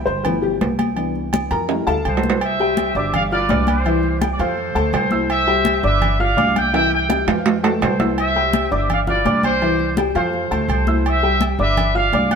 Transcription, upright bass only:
0.07 G1
0.61 C2
1.51 F2
1.87 D2
2.05 C2
2.95 G1
3.49 C2
4.39 F2
4.75 D2
4.93 C2
5.83 G1
6.37 C2
7.27 F2
7.82 C2
8.72 G1
9.25 C2
10.15 F2
10.51 D2
10.68 C2
11.59 G1
12.13 C2

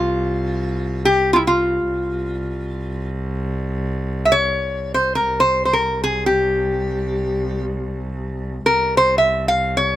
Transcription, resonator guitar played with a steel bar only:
Already playing: F4
1.05 G4
1.33 E4 F4
1.47 F4
4.25 E5
4.32 C#5
4.94 C5
5.15 A#4
5.40 C5
5.65 C5
5.73 A#4
6.04 G#4
6.26 G4
8.66 A#4
8.97 C5
9.18 E5
9.48 F5
9.77 C#5

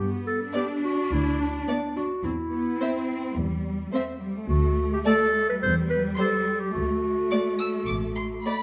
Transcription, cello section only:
0.00 B3
0.55 D4
1.69 B3
1.97 D4
2.25 C4
2.53 B3
2.81 C4
3.37 G3
3.93 A3
4.21 G3
4.49 A3
5.61 G3
6.75 A3

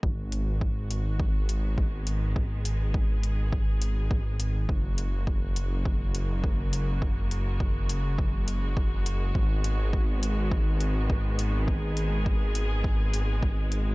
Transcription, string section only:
0.03 D#3 G#3 B3 F#4
2.36 G#4
4.68 C#3 G#3 A#3 F#4
9.35 D#3 B3
11.68 G#4

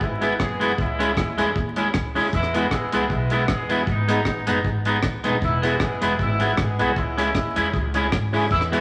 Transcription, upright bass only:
0.01 G#1
0.40 F#1
0.79 C#2
1.17 D#2
1.39 E2
1.56 D#2
1.95 C#2
2.16 D#2
2.33 E2
2.71 D#2
2.93 C#2
3.10 B1
3.49 E2
3.87 G#1
4.26 A1
4.48 F#1
4.65 G#1
5.04 C#2
5.25 D#1
5.42 E1
5.80 F#1
6.02 E1
6.19 G#1
6.58 G#1
6.80 C2
6.97 C#2
7.35 D#2
7.57 E2
7.74 C#2
8.12 G#1
8.51 E2

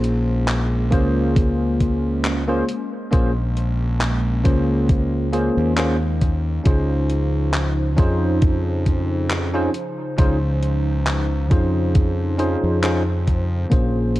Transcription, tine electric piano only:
Already playing: A#3 C#4 F4 G#4 C5
0.90 A#3 C#4 F4 G#4 C5
2.48 A#3 C#4 F4 G#4 C5
3.12 A#3 C#4 F4 G#4 C5
4.44 A#3 C#4 F4 G#4 C5
5.32 A#3 C#4 F4 G#4 C5
5.77 A#3 C#4 F4 G#4 C5
6.64 C#4 D#4 F4 G#4 C5
7.96 C#4 D#4 F4 G#4 C5
9.54 C#4 D#4 F4 G#4 C5
10.18 C#4 D#4 F4 G#4 C5
11.50 C#4 D#4 F4 G#4 C5
12.38 C#4 D#4 F4 G#4 C5
12.82 C#4 D#4 F4 G#4 C5
13.70 A#3 C#4 F4 G#4 C5

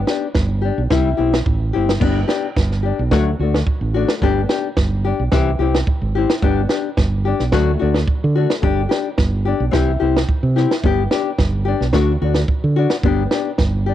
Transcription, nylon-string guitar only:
0.07 D4 G4
0.62 D4 G4
0.90 G3 C4 E4 G4
1.17 C4 E4 G4
1.73 C4 E4 G4
2.00 B3 D4 G4
2.28 D4 G4
2.83 D4 G4
3.11 F#3 A3 D4 F#4
3.40 A3 D4 F#4
3.94 A3 D4 F#4
4.22 B3 D4 G4
4.49 D4 G4
5.04 D4 G4
5.31 E3 C4 E4 G4
5.59 C4 E4 G4
6.15 C4 E4 G4
6.42 B3 D4 G4
6.69 D4 G4
7.25 D4 G4
7.52 F#3 A3 D4 F#4
7.79 A3 D4 F#4
8.36 A3 D4 F#4
8.62 D4 G4, muted nylon-string guitar stroke
8.89 D4 G4
9.45 D4 G4
9.71 E3 C4 E4 G4
10.00 C4 E4 G4
10.56 C4 E4 G4
10.84 B3 G4, muted nylon-string guitar stroke
11.11 D4 G4
11.65 D4 G4
11.93 A3 D4 F#4
12.22 D4 F#4
12.76 D4 F#4
13.04 B3 D4 G4
13.31 D4 G4
13.86 D4 G4

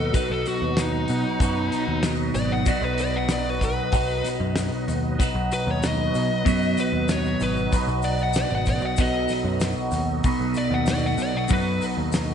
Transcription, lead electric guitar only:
Already playing: A4
0.15 B4
0.31 A4
0.48 F#4
0.80 D#4
2.35 D5
2.52 F#5
2.68 D5
2.85 B4
3.01 D5
3.16 F#5
3.32 D5
3.50 B4
3.64 B4
5.53 B4
5.71 C#5
5.88 D#5
6.80 B4
7.12 C#5
7.42 B4
8.05 D5
8.23 F#5
8.38 D5
8.55 F#5
8.69 D5
8.85 F#5
9.00 D#5
10.58 D5
10.74 F#5
10.90 D5
11.06 F#5
11.22 D5
11.37 F#5
11.53 B4

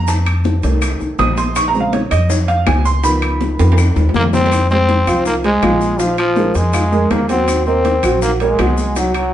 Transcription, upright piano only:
0.08 A5
0.63 D#3 A3 C#4
1.19 D#6
1.38 C6
1.56 C#6
1.68 A#5
1.74 C#3 G#3 C4
1.80 F5
1.93 C#5
2.11 D#5
2.29 C#5
2.48 F5
2.67 G#5
2.85 C6
3.03 D#3 F3 B3 B5
3.59 D#3 F3 B3
4.71 G#3 G#4 C5
5.07 F3 F4 F5
5.44 G#3 G#4 C5
5.63 F3 F4 F5
5.99 F3 F4 F5
6.36 G#3 G#4 A#4
6.73 F3 F4 F5
6.92 G#3 G#4 A#4
7.29 F#3 F#4 F#5
7.66 A#3 A#4 D#5
8.04 F#3 F#4 F#5
8.41 A#3 A#4 C#5
8.59 F#3 F#4 F#5
8.96 F#3 F#4 F#5

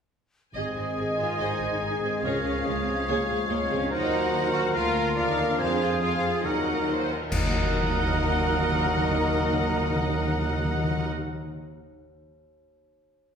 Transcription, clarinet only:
0.56 D#5
1.41 C5
1.83 G#4
2.24 A#4
2.64 G#4
3.50 C#5
3.91 C5
4.75 A#4
5.16 D5
5.58 C5
6.02 G#4
6.43 F#4
7.30 D#5

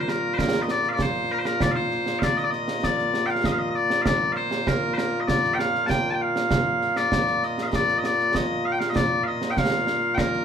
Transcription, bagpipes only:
Already playing: A#2 A#3 F4
0.00 C5
0.09 A#4
0.34 C5
0.38 A#4
0.62 D#5
0.71 D5
0.89 F5
0.93 D5
1.02 C5
1.32 A#4
1.39 C5
1.46 A#4
1.62 D5
1.71 F5
1.76 C5
2.19 F5
2.24 D5
2.37 D#5
2.44 D5
2.50 D#5
2.84 D5
3.26 F5 G5
3.46 D#5
3.52 F5
3.58 D#5
3.69 D#5
3.75 D5
4.02 F5
4.06 D5
4.32 F5
4.36 C5
4.68 A#4
4.94 A#4 C5
5.20 D#5
5.27 D5
5.54 G5
5.58 F5
5.86 G5 A5
6.10 G5 A5
6.21 F5
6.97 D5
7.44 D#5
7.63 F5
7.67 D#5
7.75 D5
7.98 D#5
8.06 D5
8.35 D#5
8.65 F5
8.72 G5
8.79 F5
8.90 D#5
8.96 D5
9.24 D#5 F5
9.51 G5
9.57 F5
10.14 A#4 G5

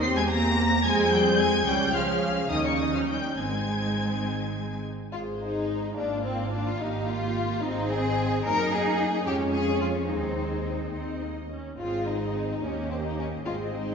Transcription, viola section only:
0.03 C4 G4
0.85 C4 G#4
1.66 C#4 G#4
2.51 C#4 D#4
3.38 C4 D#4
5.13 G#3 G#4
5.97 A#3 F4
6.80 A#3 G4
7.63 C4 G#4
8.45 A#3 D#4
9.26 G#3 F4
10.08 G#3 G#4
10.94 C4
11.23 A#3
11.51 C#4
11.79 C4 G#4
12.64 A#3 G4
13.46 C4 G#4

